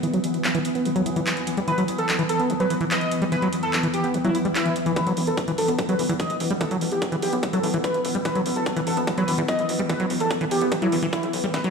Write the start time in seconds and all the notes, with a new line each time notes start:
Already playing: E3 B3 B4 F#5 E6
0.03 E3, closed hi-hat
0.14 F#3, closed hi-hat
0.24 closed hi-hat
0.34 closed hi-hat
0.44 clap, closed hi-hat
0.55 E3, closed hi-hat
0.65 closed hi-hat
0.75 B3, closed hi-hat
0.85 D#3, closed hi-hat
0.96 F#3, closed hi-hat
1.06 E3, closed hi-hat
1.16 E3, closed hi-hat
1.27 clap, closed hi-hat
1.37 closed hi-hat
1.47 closed hi-hat
1.57 G3, closed hi-hat
1.68 E3 B4, closed hi-hat
1.78 F#3, closed hi-hat
1.88 closed hi-hat
1.98 A4, closed hi-hat
2.09 clap, closed hi-hat
2.19 E3, closed hi-hat
2.29 A4, closed hi-hat
2.40 B3, closed hi-hat
2.50 D#3, closed hi-hat
2.60 F#3 B4, closed hi-hat
2.70 E3, closed hi-hat
2.81 E3, closed hi-hat
2.91 D#5, clap, closed hi-hat
3.01 closed hi-hat
3.12 closed hi-hat
3.22 G3, closed hi-hat
3.32 E3 B4, closed hi-hat
3.42 F#3, closed hi-hat
3.53 closed hi-hat
3.63 A4, closed hi-hat
3.73 clap, closed hi-hat
3.83 E3, closed hi-hat
3.94 G4, closed hi-hat
4.04 B3, closed hi-hat
4.14 D#3, closed hi-hat
4.24 F#3 E4, closed hi-hat
4.35 E4, closed hi-hat
4.45 G3, closed hi-hat
4.55 E4, clap, closed hi-hat
4.66 E3, closed hi-hat
4.76 closed hi-hat
4.86 E3, closed hi-hat
4.96 E3 B3 B4, kick, closed hi-hat
5.07 E1 F#3, closed hi-hat
5.17 E1, open hi-hat
5.27 E1 A4 F#5, closed hi-hat
5.37 kick, closed hi-hat
5.48 E1 E3, closed hi-hat
5.58 E1 A4, open hi-hat
5.68 E1 B3, closed hi-hat
5.79 D#3, kick, closed hi-hat
5.86 E2 F#3 B4 E6, closed hi-hat
5.99 E1 E3, open hi-hat
6.09 E2 E3, closed hi-hat
6.20 D#5, kick, closed hi-hat
6.30 E1, closed hi-hat
6.40 E1, open hi-hat
6.50 E1 G3, closed hi-hat
6.61 E3 A4, kick, closed hi-hat
6.71 E1 F#3, closed hi-hat
6.81 E1, open hi-hat
6.92 F#1 G4, closed hi-hat
7.02 kick, closed hi-hat
7.12 B1 E3, closed hi-hat
7.22 B1 G4, open hi-hat
7.33 B1 B3, closed hi-hat
7.43 D#3, kick, closed hi-hat
7.53 B1 F#3 A4, closed hi-hat
7.63 B1 E3, open hi-hat
7.74 B1 E3, closed hi-hat
7.84 B4, kick, closed hi-hat
7.94 E1, closed hi-hat
8.05 E1, open hi-hat
8.15 E1 G3, closed hi-hat
8.25 E3 B4, kick, closed hi-hat
8.35 E1 F#3, closed hi-hat
8.46 E1, open hi-hat
8.56 E1 A4, closed hi-hat
8.66 kick, closed hi-hat
8.77 E1 E3, closed hi-hat
8.87 E1 A4, open hi-hat
8.97 E1 B3, closed hi-hat
9.07 D#3, kick, closed hi-hat
9.18 E2 F#3 B4, closed hi-hat
9.28 E1 E3, open hi-hat
9.38 E2 E3, closed hi-hat
9.48 D#5, kick, closed hi-hat
9.59 E1, closed hi-hat
9.69 E1, open hi-hat
9.79 E1 G3, closed hi-hat
9.89 E3 B4, kick, closed hi-hat
10.00 E1 F#3, closed hi-hat
10.10 E1, open hi-hat
10.20 F#1 A4, closed hi-hat
10.31 kick, closed hi-hat
10.41 B1 E3, closed hi-hat
10.51 B1 G4, open hi-hat
10.61 B1 B3
10.72 D#3, kick, closed hi-hat
10.82 B1 F#3 E4, closed hi-hat
10.92 E1 E3, open hi-hat
11.03 E1 E3, closed hi-hat
11.13 E4, kick, closed hi-hat
11.23 B1, closed hi-hat
11.33 B1, open hi-hat
11.44 B1 G3, closed hi-hat
11.54 E3 D#4 B4, kick, snare, closed hi-hat
11.64 E1 F#3, closed hi-hat